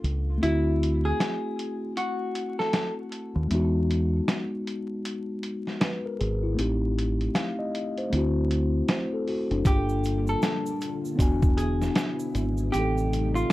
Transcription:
0.00 0.38 C#2 medium
0.00 0.39 A#3 medium
0.00 0.37 D4 medium
0.00 0.38 F4 medium
0.00 0.40 A4 medium
0.04 closed hi-hat medium
0.38 3.44 A3 medium
0.38 3.45 C4 medium
0.42 1.11 D2 loud
0.42 3.46 E4 medium
0.42 1.01 E4 loud
0.42 3.47 F#4 medium
0.42 closed hi-hat medium
0.83 closed hi-hat medium
1.05 1.92 G#4 medium
1.20 snare medium
1.20 closed hi-hat medium
1.59 closed hi-hat medium
1.97 2.55 F#4 medium
1.97 closed hi-hat medium
2.35 closed hi-hat medium
2.59 2.93 A4 medium
2.59 snare soft
2.73 snare medium
2.73 closed hi-hat medium
3.12 closed hi-hat medium
3.36 3.49 D#2 loud
3.48 4.19 E2 loud
3.48 6.53 G#3 medium
3.48 6.54 B3 medium
3.48 closed hi-hat medium
3.53 5.78 D#4 medium
3.53 5.79 F#4 medium
3.91 closed hi-hat medium
4.28 snare medium
4.28 closed hi-hat medium
4.67 closed hi-hat medium
5.05 closed hi-hat medium
5.43 closed hi-hat medium
5.67 snare soft
5.81 6.03 B4 medium
5.81 snare loud
5.81 closed hi-hat medium
6.06 6.19 A#4 medium
6.20 6.54 G#1 medium
6.20 6.42 G#4 medium
6.20 closed hi-hat medium
6.43 6.79 E4 medium
6.54 8.07 A3 medium
6.54 8.08 C4 medium
6.59 7.27 A1 medium
6.59 8.09 D#4 medium
6.59 8.10 G4 medium
6.59 closed hi-hat medium
6.99 closed hi-hat medium
7.21 closed hi-hat soft
7.35 7.57 F5 medium
7.35 snare medium
7.35 closed hi-hat medium
7.59 7.95 D#5 medium
7.75 closed hi-hat medium
7.97 8.34 C5 medium
7.97 closed hi-hat soft
8.10 8.81 D2 medium
8.10 9.61 A3 medium
8.10 9.62 C4 medium
8.10 closed hi-hat medium
8.15 8.51 E4 medium
8.15 8.52 F#4 medium
8.51 closed hi-hat medium
8.88 9.12 C5 medium
8.88 snare loud
8.88 closed hi-hat medium
9.14 9.27 A4 medium
9.28 9.50 F#4 medium
9.28 open hi-hat soft
9.51 9.64 F#1 medium
9.51 9.65 D4 medium
9.51 closed hi-hat soft
9.65 10.34 G1 medium
9.65 12.70 D3 medium
9.65 11.17 G3 medium
9.65 11.18 A#3 medium
9.65 11.16 D4 medium
9.65 11.17 F4 medium
9.65 11.18 F4 medium
9.65 10.24 G4 medium
9.65 kick loud
9.65 closed hi-hat loud
9.65 shaker medium
9.71 9.76 G#4 medium
9.77 11.22 A4 medium
9.89 shaker soft
10.04 closed hi-hat medium
10.04 shaker soft
10.27 11.54 A4 medium
10.27 shaker soft
10.42 snare medium
10.42 closed hi-hat medium
10.42 shaker medium
10.66 shaker medium
10.81 closed hi-hat medium
10.81 shaker soft
11.05 shaker soft
11.15 11.88 E1 loud
11.15 12.71 E3 medium
11.15 12.68 B3 medium
11.15 12.69 D4 medium
11.15 12.70 F#4 medium
11.15 kick medium
11.20 12.72 B3 medium
11.20 12.72 E4 medium
11.20 12.71 G#5 medium
11.20 closed hi-hat medium
11.20 shaker medium
11.42 kick medium
11.42 shaker soft
11.57 12.16 G#4 medium
11.57 closed hi-hat medium
11.57 shaker soft
11.81 snare soft
11.81 shaker soft
11.95 snare loud
11.95 closed hi-hat medium
11.95 shaker medium
12.20 shaker medium
12.35 12.69 G#1 loud
12.35 closed hi-hat medium
12.35 shaker soft
12.58 shaker soft
12.72 13.42 A1 loud
12.72 13.53 C3 medium
12.72 13.53 G3 medium
12.72 13.53 A3 medium
12.72 13.53 C4 medium
12.72 13.53 D#4 medium
12.72 13.53 D#4 soft
12.72 13.31 G4 medium
12.72 closed hi-hat medium
12.72 shaker medium
12.76 13.53 G4 medium
12.76 13.53 A4 medium
12.98 shaker soft
13.13 closed hi-hat medium
13.13 shaker soft
13.35 13.53 F4 medium
13.35 shaker soft

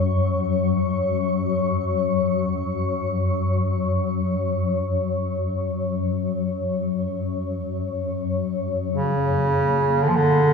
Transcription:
0.00 9.01 F#2 medium
0.00 9.01 F#3 medium
8.90 10.53 A#2 medium
8.90 10.04 C#3 medium
8.90 10.53 A#3 medium
10.02 10.10 D3 medium
10.08 10.17 F3 medium
10.16 10.53 D3 medium

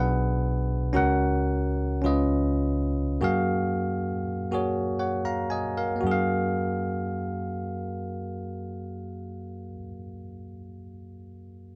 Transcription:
0.00 0.92 B1 medium
0.00 0.92 B2 medium
0.00 0.63 D4 medium
0.00 0.64 G#4 medium
0.00 0.64 B4 medium
0.00 0.68 F#5 medium
0.93 2.00 C#2 medium
0.93 2.00 C#3 medium
0.93 1.70 C#4 medium
0.93 1.71 F#4 medium
0.93 1.71 A#4 medium
0.93 1.72 F#5 medium
2.02 3.17 C#2 medium
2.02 3.17 C#3 medium
2.02 2.84 C#4 medium
2.02 2.85 F4 medium
2.02 2.85 B4 medium
2.06 2.86 D#5 medium
3.21 5.99 F#2 medium
3.21 4.10 A#3 medium
3.21 4.10 F#4 medium
3.21 4.11 G#4 medium
3.21 4.12 F5 medium
4.51 5.54 A#3 soft
4.51 5.55 F#4 medium
4.51 5.55 G#4 medium
4.51 4.99 C#5 medium
4.99 5.23 C#5 soft
4.99 5.22 F#5 soft
5.25 5.49 F5 soft
5.25 5.48 A#5 soft
5.50 5.75 D#5 soft
5.50 5.75 G#5 medium
5.77 6.29 A#4 soft
5.77 6.10 F5 medium
5.96 9.68 A#3 medium
6.01 9.76 F#2 medium
6.01 9.73 F#4 medium
6.07 9.79 G#4 medium
6.11 9.83 F5 medium

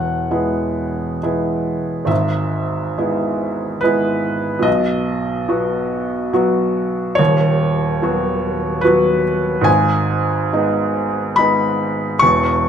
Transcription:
0.00 2.03 E1 soft
0.00 2.06 E2 soft
0.00 2.09 F#5 medium
0.31 1.19 G#3 soft
0.31 1.19 B3 soft
0.31 1.19 E4 soft
1.23 2.07 G#3 soft
1.23 2.07 B3 soft
1.23 2.07 E4 soft
2.05 4.60 G#1 soft
2.05 4.61 G#2 soft
2.05 3.82 E5 medium
2.98 3.81 G#3 soft
2.98 3.81 B3 soft
2.98 3.81 E4 soft
3.81 4.63 G#3 soft
3.81 4.63 B3 soft
3.81 4.63 E4 soft
3.81 4.65 B4 medium
4.59 7.13 B1 medium
4.59 7.11 B2 soft
4.59 7.17 D#5 medium
5.48 6.30 F#3 soft
5.48 6.30 B3 soft
5.48 6.30 F#4 soft
6.33 7.15 F#3 soft
6.33 7.15 B3 soft
6.33 7.15 F#4 soft
7.15 9.63 D#1 soft
7.15 9.63 D#2 medium
7.15 8.82 C#5 medium
8.02 8.80 F#3 soft
8.02 8.80 B3 soft
8.02 8.80 F#4 soft
8.81 9.63 F#3 soft
8.81 9.63 B3 soft
8.81 9.63 F#4 soft
8.81 9.24 B4 medium
9.61 12.15 G#1 medium
9.61 12.15 G#2 medium
9.61 11.36 G#5 medium
10.53 11.34 G#3 soft
10.53 11.34 B3 soft
10.53 11.35 D#4 medium
11.36 12.18 G#3 soft
11.36 12.18 B3 soft
11.36 12.18 D#4 soft
11.36 12.21 B5 medium
12.19 12.69 E1 medium
12.19 12.69 E2 medium
12.19 12.69 C#6 loud

